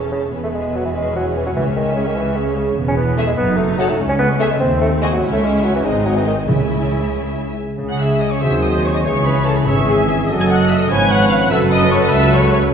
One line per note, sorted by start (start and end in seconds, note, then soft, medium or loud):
0.00 0.30 E1 medium
0.00 0.30 E2 medium
0.00 0.11 C#3 medium
0.00 0.29 C#4 medium
0.00 0.29 A4 medium
0.00 0.29 C#5 medium
0.00 0.30 E5 medium
0.12 0.21 C#3 medium
0.33 1.54 E1 medium
0.33 1.54 E2 medium
0.33 0.95 B3 medium
0.33 2.74 G#4 medium
0.33 1.52 B4 medium
0.33 1.53 E5 medium
0.43 0.48 A3 medium
0.54 0.77 G#3 medium
0.75 0.85 F#3 medium
0.85 0.90 E3 medium
0.95 1.15 G#3 medium
0.95 2.75 C#4 medium
1.16 1.25 F#3 medium
1.37 1.46 E3 medium
1.46 1.51 F#3 medium
1.56 2.76 C#2 medium
1.56 2.13 C#3 medium
1.56 1.66 E3 medium
1.56 2.75 E5 medium
1.56 2.74 G#5 medium
1.76 1.96 D#3 medium
1.96 2.08 C#3 medium
2.06 2.18 D#3 medium
2.16 2.38 E3 medium
2.36 2.56 C#3 medium
2.56 2.77 C#3 medium
2.78 3.28 E1 medium
2.78 3.28 E2 medium
2.78 3.37 B3 medium
2.88 2.93 C#4 medium
2.97 3.19 B3 medium
3.18 3.27 A3 medium
3.18 3.27 G#4 medium
3.18 3.27 E5 medium
3.18 3.28 G#5 medium
3.27 3.32 G#3 medium
3.37 3.90 F#1 medium
3.37 3.89 F#2 medium
3.37 3.59 B3 loud
3.37 3.98 D#4 medium
3.57 3.78 A3 medium
3.78 3.90 F#3 loud
3.78 3.89 A4 medium
3.78 3.89 C#5 medium
3.78 3.89 F#5 medium
3.89 3.99 A3 medium
3.99 4.51 C#2 medium
3.99 4.61 C#4 medium
4.09 4.14 C#4 loud
4.19 4.28 B3 loud
4.39 4.52 A3 loud
4.39 4.50 G#4 medium
4.39 4.50 E5 medium
4.39 4.50 G#5 medium
4.50 4.59 G#3 loud
4.60 5.13 D#2 medium
4.60 4.81 C4 loud
4.60 5.23 C4 medium
4.81 4.91 A3 medium
5.01 5.06 G#3 medium
5.01 5.12 F#4 medium
5.01 5.12 D#5 medium
5.01 5.13 G#5 medium
5.12 5.23 F#3 medium
5.22 5.81 C#2 medium
5.22 5.82 C#2 medium
5.22 5.84 C#4 medium
5.22 5.81 E4 medium
5.22 5.82 E5 medium
5.22 5.82 G#5 medium
5.32 5.45 A3 loud
5.44 5.66 G#3 medium
5.64 5.75 F#3 medium
5.75 5.86 E3 medium
5.85 6.48 G#1 medium
5.85 6.48 G#2 medium
5.85 6.07 G#3 loud
5.85 6.48 C4 medium
5.85 6.49 D#4 medium
5.85 6.48 D#5 medium
5.85 6.48 G#5 medium
6.05 6.18 F#3 medium
6.17 6.26 E3 medium
6.27 6.37 D#3 medium
6.48 7.58 C#2 medium
6.48 7.55 C#3 medium
6.48 7.10 C#3 medium
6.48 7.56 C#4 medium
6.48 7.44 E4 medium
6.48 7.56 E5 medium
6.48 7.56 G#5 medium
7.78 8.39 C#2 medium
7.78 8.44 C#3 medium
7.78 8.38 C#3 medium
7.78 8.38 G#3 medium
7.78 8.38 C#4 medium
7.78 8.39 G#4 medium
7.89 7.99 F#5 medium
7.89 7.95 F#5 medium
7.89 7.99 F#6 medium
7.99 8.21 E5 medium
7.99 8.23 E5 medium
7.99 8.21 E6 medium
8.19 8.25 D#5 medium
8.19 8.33 D#5 medium
8.19 8.31 D#6 medium
8.31 8.42 C#5 medium
8.31 8.43 C#5 medium
8.31 8.42 C#6 medium
8.41 9.04 D#2 medium
8.41 9.04 D#3 medium
8.41 9.04 F#3 medium
8.41 9.06 F#3 medium
8.41 9.06 C4 medium
8.41 9.04 G#4 medium
8.41 9.01 C5 medium
8.41 8.50 E5 loud
8.41 8.49 E5 loud
8.41 8.63 E6 loud
8.62 8.84 D#5 medium
8.62 8.69 D#5 medium
8.62 8.84 D#6 medium
8.84 8.96 C#5 medium
8.84 8.95 C#5 medium
8.84 8.95 C#6 loud
8.94 8.98 D#5 medium
8.94 9.07 D#5 medium
8.94 9.05 D#6 medium
9.04 9.66 C#2 medium
9.04 9.66 C#3 medium
9.04 9.66 E3 medium
9.04 9.67 E3 medium
9.04 9.68 C#4 medium
9.04 9.66 G#4 medium
9.04 9.12 C#5 medium
9.04 9.28 C#5 medium
9.04 9.67 C#5 medium
9.04 9.25 C#6 loud
9.25 9.45 B4 medium
9.25 9.47 B4 medium
9.25 9.46 B5 loud
9.45 9.56 A4 medium
9.45 9.59 A4 medium
9.45 9.56 A5 medium
9.56 9.66 B4 medium
9.56 9.70 B4 medium
9.56 9.67 B5 medium
9.66 10.29 G#1 medium
9.66 10.29 G#2 medium
9.66 10.31 E3 medium
9.66 10.29 E3 medium
9.66 10.29 C#4 medium
9.66 10.32 G#4 medium
9.66 10.29 G#4 medium
9.66 9.74 C#5 medium
9.66 9.88 C#5 medium
9.66 10.28 E5 medium
9.66 9.88 C#6 loud
9.87 9.95 G#4 medium
9.87 10.09 G#4 medium
9.87 10.07 G#5 loud
10.08 10.16 G#4 medium
10.08 10.29 G#4 medium
10.08 10.16 G#5 loud
10.29 10.89 F#1 medium
10.29 10.89 F#2 medium
10.29 10.89 F#3 medium
10.29 10.91 F#3 medium
10.29 10.89 C#4 medium
10.29 10.92 A4 medium
10.29 10.90 A4 medium
10.29 10.90 D#5 loud
10.39 10.49 G#5 medium
10.39 10.44 G#6 loud
10.49 10.70 F#5 medium
10.49 10.56 F#5 medium
10.49 10.70 F#6 loud
10.70 10.80 E5 medium
10.70 10.75 E5 medium
10.70 10.80 E6 loud
10.80 10.85 D#5 medium
10.80 10.91 D#5 medium
10.80 10.90 D#6 loud
10.90 11.50 G#1 medium
10.90 11.50 G#2 medium
10.90 11.52 F3 medium
10.90 11.51 C#4 medium
10.90 11.53 B4 medium
10.90 11.54 B4 medium
10.90 11.50 C#5 loud
10.90 11.10 G#5 loud
10.90 11.13 G#5 loud
10.90 11.10 G#6 loud
11.10 11.30 F#5 medium
11.10 11.31 F#5 loud
11.10 11.31 F#6 loud
11.30 11.41 F5 medium
11.30 11.36 F5 loud
11.30 11.41 F6 loud
11.40 11.51 F#5 loud
11.40 11.50 F#5 medium
11.40 11.51 F#6 loud
11.50 12.12 F#1 loud
11.50 12.11 F#2 loud
11.50 12.72 F#3 medium
11.50 12.73 F#3 medium
11.50 12.71 C#4 medium
11.50 12.73 A4 medium
11.50 12.71 B4 loud
11.50 11.58 E5 loud
11.50 11.57 E5 loud
11.50 11.59 E6 loud
11.71 11.93 D#5 medium
11.71 11.91 D#5 loud
11.71 11.91 D#6 loud
11.92 12.02 C#5 loud
11.92 12.01 C#5 loud
11.92 11.96 C#6 loud
12.01 12.06 D#5 medium
12.01 12.12 D#5 medium
12.01 12.13 D#6 loud
12.11 12.72 C#2 loud
12.11 12.72 C#2 medium
12.11 12.32 E5 loud
12.11 12.33 E5 loud
12.11 12.33 E6 loud
12.32 12.38 C#5 medium
12.32 12.52 C#5 loud
12.32 12.51 C#6 loud
12.52 12.58 C#5 loud
12.52 12.61 C#5 loud
12.52 12.60 C#6 loud